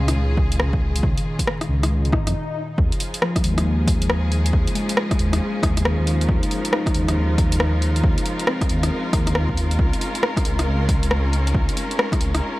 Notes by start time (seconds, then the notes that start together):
Already playing: C#2 A#2 G#3 C#4 D#4 F4 G#4
0.08 cross-stick, closed hi-hat
0.15 C#2
0.37 kick
0.52 closed hi-hat
0.60 cross-stick
0.73 kick
0.96 closed hi-hat
1.03 C#2 D#3, kick
1.18 closed hi-hat
1.39 kick, closed hi-hat
1.47 cross-stick
1.61 cross-stick, closed hi-hat
1.69 C#2
1.83 cross-stick, closed hi-hat
1.90 swell
2.05 closed hi-hat
2.12 G#1, kick, cross-stick
2.26 F2, cross-stick, closed hi-hat
2.78 D#2 C#3 F3 D#4 F4 G#4, kick
2.92 closed hi-hat
3.00 open hi-hat
3.14 closed hi-hat
3.22 F3, cross-stick
3.36 kick, cross-stick, closed hi-hat
3.41 D#2 G#3, open hi-hat
3.54 A#3
3.58 cross-stick, closed hi-hat
3.65 D#2
3.87 kick, open hi-hat
4.02 closed hi-hat
4.10 cross-stick
4.32 open hi-hat
4.46 closed hi-hat
4.53 D#2, kick
4.67 closed hi-hat
4.75 G#3, open hi-hat
4.89 closed hi-hat
4.97 cross-stick
5.11 kick, cross-stick, closed hi-hat
5.19 D#2, open hi-hat
5.33 cross-stick, closed hi-hat
5.63 D#2, kick, cross-stick, open hi-hat
5.77 cross-stick, closed hi-hat
5.85 cross-stick
5.98 D#2
6.06 D#4, open hi-hat
6.21 closed hi-hat
6.29 D#2 A#4, kick
6.43 closed hi-hat
6.51 open hi-hat
6.65 closed hi-hat
6.72 D#4, cross-stick
6.86 kick, cross-stick, closed hi-hat
6.94 D#2, open hi-hat
7.08 cross-stick, closed hi-hat
7.16 D#2
7.38 kick, open hi-hat
7.52 closed hi-hat
7.60 cross-stick
7.82 open hi-hat
7.96 closed hi-hat
8.04 D#2, kick
8.18 closed hi-hat
8.26 open hi-hat
8.39 closed hi-hat
8.47 C4, cross-stick
8.61 kick, cross-stick, closed hi-hat
8.69 D#2, open hi-hat
8.83 cross-stick, closed hi-hat
9.13 D#2, kick, cross-stick, open hi-hat
9.27 cross-stick, closed hi-hat
9.35 cross-stick
9.49 D#2, kick
9.57 open hi-hat
9.71 closed hi-hat
9.79 C#2 G#3 C#4, kick
9.93 closed hi-hat
10.01 open hi-hat
10.15 closed hi-hat
10.23 cross-stick
10.37 kick, cross-stick, closed hi-hat
10.45 C#2, open hi-hat
10.59 cross-stick, closed hi-hat
10.67 C#2
10.89 kick, open hi-hat
11.03 closed hi-hat
11.11 cross-stick
11.33 open hi-hat
11.47 closed hi-hat
11.54 C#2, kick
11.69 closed hi-hat
11.77 open hi-hat
11.91 closed hi-hat
11.99 cross-stick
12.12 kick, cross-stick, closed hi-hat
12.20 C#2, open hi-hat
12.35 cross-stick, closed hi-hat